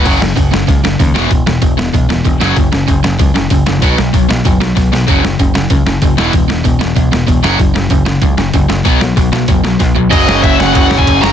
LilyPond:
<<
  \new Staff \with { instrumentName = "Lead electric guitar" } { \time 4/4 \key e \lydian \tempo 4 = 191 r1 | r1 | r1 | r1 |
r1 | r1 | r1 | r1 |
dis''4 e''8 fis''8 fis''8. gis''8. ais''8 | }
  \new Staff \with { instrumentName = "Overdriven electric guitar" } { \clef bass \time 4/4 \key e \lydian r1 | r1 | r1 | r1 |
r1 | r1 | r1 | r1 |
<fis, cis fis>1 | }
  \new Staff \with { instrumentName = "Distorted electric guitar" } { \clef bass \time 4/4 \key e \lydian <fis, cis fis>8 <fis, cis>8 <fis, cis>8 <fis, cis>8 <fis, cis>8 <fis, cis>8 <fis, cis>8 <e, b, e>8 | <e, b,>8 <e, b,>8 <e, b,>8 <e, b,>8 <e, b,>8 <e, b,>8 <e, b,>8 <fis, cis fis>8 | <fis, cis>8 <fis, cis>8 <fis, cis>8 <fis, cis>8 <fis, cis>8 <fis, cis>8 <fis, cis>8 <fis, cis>8 | <b, fis b>8 <b, fis>8 <b, fis>8 <b, fis>8 <b, fis>8 <b, fis>8 <b, fis>8 <b, fis>8 |
<fis, cis fis>8 <fis, cis>8 <fis, cis>8 <fis, cis>8 <fis, cis>8 <fis, cis>8 <fis, cis>8 <e, b, e>8 | <e, b,>8 <e, b,>8 <e, b,>8 <e, b,>8 <e, b,>8 <e, b,>8 <e, b,>8 <fis, cis fis>8 | <fis, cis>8 <fis, cis>8 <fis, cis>8 <fis, cis>8 <fis, cis>8 <fis, cis>8 <fis, cis>8 <fis, cis>8 | <b, fis b>8 <b, fis>8 <b, fis>8 <b, fis>8 <b, fis>8 <b, fis>8 <b, fis>8 <b, fis>8 |
<fis, cis fis>1 | }
  \new Staff \with { instrumentName = "Overdriven electric guitar" } { \clef bass \time 4/4 \key e \lydian <fis, cis fis>8 <fis, cis>8 <fis, cis>8 <fis, cis>8 <fis, cis>8 <fis, cis>8 <fis, cis>8 <e, b, e>8 | <e, b,>8 <e, b,>8 <e, b,>8 <e, b,>8 <e, b,>8 <e, b,>8 <e, b,>8 <fis, cis fis>8 | <fis, cis>8 <fis, cis>8 <fis, cis>8 <fis, cis>8 <fis, cis>8 <fis, cis>8 <fis, cis>8 <fis, cis>8 | <b, fis b>8 <b, fis>8 <b, fis>8 <b, fis>8 <b, fis>8 <b, fis>8 <b, fis>8 <b, fis>8 |
<fis, cis fis>8 <fis, cis>8 <fis, cis>8 <fis, cis>8 <fis, cis>8 <fis, cis>8 <fis, cis>8 <e, b, e>8 | <e, b,>8 <e, b,>8 <e, b,>8 <e, b,>8 <e, b,>8 <e, b,>8 <e, b,>8 <fis, cis fis>8 | <fis, cis>8 <fis, cis>8 <fis, cis>8 <fis, cis>8 <fis, cis>8 <fis, cis>8 <fis, cis>8 <fis, cis>8 | <b, fis b>8 <b, fis>8 <b, fis>8 <b, fis>8 <b, fis>8 <b, fis>8 <b, fis>8 <b, fis>8 |
<fis, cis fis>2.~ <fis, cis fis>8 <fis, cis fis>8 | }
  \new Staff \with { instrumentName = "Picked electric bass" } { \clef bass \time 4/4 \key e \lydian fis,,8 fis,,8 fis,,8 fis,,8 cis,8 fis,,8 dis,8 e,,8 | e,,8 e,,8 e,,8 e,,8 b,,8 e,,8 e,,8 fis,,8 | fis,,8 fis,,8 fis,,8 fis,,8 cis,8 fis,,8 fis,,8 fis,,8 | b,,8 b,,8 b,,8 b,,8 fis,,8 b,,8 b,,8 b,,8 |
fis,,8 fis,,8 fis,,8 fis,,8 cis,8 fis,,8 fis,,8 e,,8 | e,,8 e,,8 e,,8 e,,8 b,,8 e,,8 e,,8 fis,,8 | fis,,8 fis,,8 fis,,8 fis,,8 cis,8 fis,,8 fis,,8 fis,,8 | b,,8 b,,8 b,,8 b,,8 fis,,8 b,,8 b,,8 b,,8 |
fis,,8 fis,,8 fis,,8 fis,,8 fis,,8 fis,,8 fis,,8 fis,,8 | }
  \new DrumStaff \with { instrumentName = "Drums" } \drummode { \time 4/4 <cymc hho bd>8 sn8 <hho bd>8 sn8 <hho bd>8 sn8 <hho bd>8 sn8 | <hho bd>8 sn8 <hho bd>8 sn8 <hho bd>8 sn8 <hho bd>8 sn8 | <hho bd>8 sn8 <hho bd>8 sn8 <hho bd>8 sn8 <hho bd>8 sn8 | <hho bd>8 sn8 <hho bd>8 sn8 <hho bd>8 sn8 <hho bd sn>8 sn8 |
<hho bd>8 sn8 <hho bd>8 sn8 <hho bd>8 sn8 <hho bd>8 sn8 | <hho bd>8 sn8 <hho bd>8 sn8 <hho bd>8 sn8 <hho bd>8 sn8 | <hho bd>8 sn8 <hho bd>8 sn8 <hho bd>8 sn8 <hho bd>8 sn8 | <hho bd>8 sn8 <hho bd>8 sn8 <hho bd>8 sn8 <hho bd sn>8 tomfh8 |
<cymc bd cymr>8 sn8 <bd cymr>8 sn8 <bd cymr>8 sn16 bd16 <bd cymr>8 sn8 | }
>>